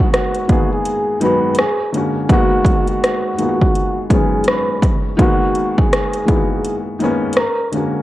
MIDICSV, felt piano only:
0, 0, Header, 1, 2, 480
1, 0, Start_track
1, 0, Key_signature, 5, "minor"
1, 0, Tempo, 722892
1, 1524, Time_signature, 4, 2, 24, 8
1, 5327, End_track
2, 0, Start_track
2, 0, Title_t, "Felt piano"
2, 0, Program_c, 0, 0
2, 0, Control_c, 0, 64, 127
2, 0, Note_on_c, 0, 51, 90
2, 0, Note_on_c, 0, 56, 95
2, 0, Note_on_c, 0, 58, 92
2, 0, Note_on_c, 0, 59, 94
2, 0, Note_on_c, 0, 66, 126
2, 267, Note_off_c, 0, 51, 0
2, 270, Note_off_c, 0, 56, 0
2, 274, Note_off_c, 0, 58, 0
2, 277, Note_off_c, 0, 59, 0
2, 282, Note_off_c, 0, 66, 0
2, 316, Note_on_c, 0, 51, 69
2, 324, Note_on_c, 0, 56, 67
2, 331, Note_on_c, 0, 58, 66
2, 340, Note_on_c, 0, 59, 68
2, 347, Note_on_c, 0, 68, 81
2, 764, Note_off_c, 0, 51, 0
2, 768, Note_off_c, 0, 56, 0
2, 771, Note_off_c, 0, 58, 0
2, 776, Note_off_c, 0, 59, 0
2, 780, Note_off_c, 0, 68, 0
2, 799, Note_on_c, 0, 51, 97
2, 807, Note_on_c, 0, 56, 85
2, 813, Note_on_c, 0, 54, 77
2, 821, Note_on_c, 0, 59, 89
2, 829, Note_on_c, 0, 66, 97
2, 1041, Note_off_c, 0, 51, 0
2, 1046, Note_off_c, 0, 56, 0
2, 1048, Note_off_c, 0, 54, 0
2, 1053, Note_off_c, 0, 59, 0
2, 1053, Control_c, 0, 64, 0
2, 1056, Note_off_c, 0, 66, 0
2, 1166, Control_c, 0, 64, 127
2, 1278, Note_on_c, 0, 50, 70
2, 1286, Note_on_c, 0, 56, 59
2, 1292, Note_on_c, 0, 58, 59
2, 1300, Note_on_c, 0, 61, 60
2, 1309, Note_on_c, 0, 66, 67
2, 1503, Note_off_c, 0, 50, 0
2, 1507, Note_off_c, 0, 56, 0
2, 1510, Note_off_c, 0, 58, 0
2, 1514, Note_off_c, 0, 61, 0
2, 1518, Note_off_c, 0, 66, 0
2, 1522, Note_on_c, 0, 51, 91
2, 1528, Note_on_c, 0, 56, 94
2, 1531, Control_c, 0, 64, 0
2, 1535, Note_on_c, 0, 58, 92
2, 1542, Note_on_c, 0, 59, 88
2, 1550, Note_on_c, 0, 66, 120
2, 1630, Control_c, 0, 64, 127
2, 2189, Note_off_c, 0, 51, 0
2, 2192, Note_off_c, 0, 56, 0
2, 2196, Note_off_c, 0, 58, 0
2, 2199, Note_off_c, 0, 59, 0
2, 2203, Note_off_c, 0, 66, 0
2, 2243, Note_on_c, 0, 51, 72
2, 2249, Note_on_c, 0, 56, 68
2, 2258, Note_on_c, 0, 58, 55
2, 2265, Note_on_c, 0, 59, 62
2, 2274, Note_on_c, 0, 65, 56
2, 2314, Note_off_c, 0, 65, 0
2, 2315, Note_on_c, 0, 66, 66
2, 2687, Note_off_c, 0, 51, 0
2, 2691, Note_off_c, 0, 56, 0
2, 2695, Note_off_c, 0, 58, 0
2, 2699, Note_off_c, 0, 59, 0
2, 2720, Note_on_c, 0, 51, 81
2, 2724, Note_off_c, 0, 66, 0
2, 2727, Note_on_c, 0, 56, 70
2, 2735, Note_on_c, 0, 54, 68
2, 2742, Note_on_c, 0, 59, 70
2, 2750, Note_on_c, 0, 61, 74
2, 3388, Note_off_c, 0, 51, 0
2, 3391, Note_off_c, 0, 56, 0
2, 3396, Note_off_c, 0, 54, 0
2, 3399, Note_off_c, 0, 59, 0
2, 3403, Note_off_c, 0, 61, 0
2, 3433, Note_on_c, 0, 51, 113
2, 3441, Note_on_c, 0, 56, 98
2, 3448, Note_on_c, 0, 58, 88
2, 3452, Control_c, 0, 64, 0
2, 3455, Note_on_c, 0, 59, 86
2, 3465, Note_on_c, 0, 66, 97
2, 3576, Control_c, 0, 64, 127
2, 4104, Note_off_c, 0, 51, 0
2, 4109, Note_off_c, 0, 56, 0
2, 4112, Note_off_c, 0, 58, 0
2, 4116, Note_off_c, 0, 59, 0
2, 4121, Note_off_c, 0, 66, 0
2, 4150, Note_on_c, 0, 51, 65
2, 4159, Note_on_c, 0, 56, 65
2, 4166, Note_on_c, 0, 58, 55
2, 4175, Note_on_c, 0, 59, 59
2, 4181, Note_on_c, 0, 64, 54
2, 4224, Note_on_c, 0, 66, 80
2, 4227, Note_off_c, 0, 64, 0
2, 4601, Note_off_c, 0, 51, 0
2, 4606, Note_off_c, 0, 56, 0
2, 4609, Note_off_c, 0, 58, 0
2, 4613, Note_off_c, 0, 59, 0
2, 4638, Note_off_c, 0, 66, 0
2, 4641, Note_on_c, 0, 51, 91
2, 4648, Note_on_c, 0, 56, 83
2, 4656, Note_on_c, 0, 58, 77
2, 4664, Note_on_c, 0, 59, 83
2, 4672, Note_on_c, 0, 61, 93
2, 4882, Note_off_c, 0, 51, 0
2, 4886, Note_off_c, 0, 56, 0
2, 4890, Note_off_c, 0, 58, 0
2, 4891, Control_c, 0, 64, 0
2, 4894, Note_off_c, 0, 59, 0
2, 4898, Note_off_c, 0, 61, 0
2, 4991, Control_c, 0, 64, 127
2, 5125, Note_on_c, 0, 50, 68
2, 5132, Note_on_c, 0, 56, 60
2, 5140, Note_on_c, 0, 58, 64
2, 5148, Note_on_c, 0, 61, 54
2, 5156, Note_on_c, 0, 66, 65
2, 5327, Note_off_c, 0, 50, 0
2, 5327, Note_off_c, 0, 56, 0
2, 5327, Note_off_c, 0, 58, 0
2, 5327, Note_off_c, 0, 61, 0
2, 5327, Note_off_c, 0, 66, 0
2, 5327, End_track
0, 0, End_of_file